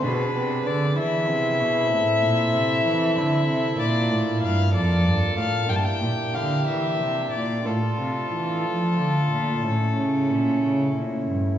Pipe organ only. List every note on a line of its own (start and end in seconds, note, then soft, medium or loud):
0.00 0.32 B2 medium
0.00 1.85 B3 medium
0.00 1.86 D4 medium
0.00 1.87 G#4 medium
0.35 0.63 C3 medium
0.66 0.94 D3 medium
0.98 1.26 E3 medium
1.29 1.57 C3 medium
1.60 1.88 B2 medium
1.87 3.73 C4 medium
1.87 3.74 A4 medium
1.91 2.19 A2 medium
2.23 2.51 A#2 medium
2.54 2.82 C3 medium
2.86 3.14 E3 medium
3.17 3.45 D3 medium
3.48 3.77 C3 medium
3.75 5.63 A#3 medium
3.75 5.64 D4 medium
3.75 5.65 F4 medium
3.80 4.08 A#2 medium
4.11 4.39 A2 medium
4.43 4.71 G2 medium
4.74 5.03 F2 medium
5.06 5.35 G2 medium
5.38 5.67 A2 medium
5.65 7.59 A#3 medium
5.65 7.60 D4 medium
5.65 7.61 E4 medium
5.70 5.98 G2 medium
6.02 6.31 A#2 medium
6.34 6.64 D3 medium
6.67 6.96 E3 soft
6.99 7.29 C3 medium
7.33 7.62 A#2 medium
7.61 9.59 A3 soft
7.61 9.60 D4 soft
7.61 9.60 F4 soft
7.66 7.95 A2 medium
7.98 8.28 C3 soft
8.31 8.61 E3 medium
8.64 8.95 F3 medium
8.98 9.28 D3 soft
9.31 9.61 A#2 medium
9.61 11.56 A3 soft
9.61 11.57 C#4 soft
9.61 11.58 E4 soft
9.65 9.95 A2 medium
9.98 10.28 C#3 soft
10.31 10.60 A#2 soft
10.63 10.93 C#3 medium
10.96 11.26 A#2 medium
11.29 11.58 G2 soft